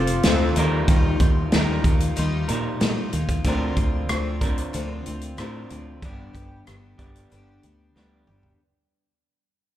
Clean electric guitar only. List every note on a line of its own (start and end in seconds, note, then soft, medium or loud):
0.00 0.24 F3 medium
0.00 0.23 C4 medium
0.00 0.26 F4 medium
0.00 0.22 A4 medium
0.25 0.56 F3 medium
0.25 0.55 C4 medium
0.25 0.58 F4 medium
0.25 0.56 A4 medium
0.56 1.50 D#3 medium
0.56 1.53 F3 medium
0.56 1.51 G3 medium
0.56 1.51 D#4 medium
0.56 1.56 A#4 medium
1.53 2.47 D#3 medium
1.53 2.47 F3 medium
1.53 2.48 G3 medium
1.53 2.48 D#4 medium
1.53 2.47 A#4 medium
2.48 3.12 D#3 soft
2.48 3.12 F3 medium
2.48 3.12 G3 medium
2.48 3.11 D#4 medium
2.48 3.11 A#4 medium
3.45 4.39 D3 medium
3.45 4.40 F3 medium
3.45 4.40 C4 medium
3.45 4.41 D4 medium
3.45 4.40 A#4 medium
4.41 5.37 D3 medium
4.41 5.37 F3 medium
4.41 5.37 C4 medium
4.41 5.41 D4 medium
4.41 5.36 A#4 medium
5.38 6.00 D3 medium
5.38 6.01 F3 medium
5.38 6.01 C4 medium
5.38 6.05 D4 medium
5.38 6.02 A#4 medium
6.02 6.97 G2 medium
6.02 6.97 D3 medium
6.02 6.97 G3 medium
6.02 6.98 B3 medium
6.02 6.98 D4 medium
6.02 6.97 G4 medium
6.98 7.94 G2 medium
6.98 7.94 D3 medium
6.98 7.94 G3 medium
6.98 7.94 B3 medium
6.98 7.93 D4 medium
6.98 7.93 G4 medium
7.95 8.57 G2 medium
7.95 8.58 D3 medium
7.95 8.58 G3 medium
7.95 8.59 B3 medium
7.95 8.59 D4 medium
7.95 8.59 G4 medium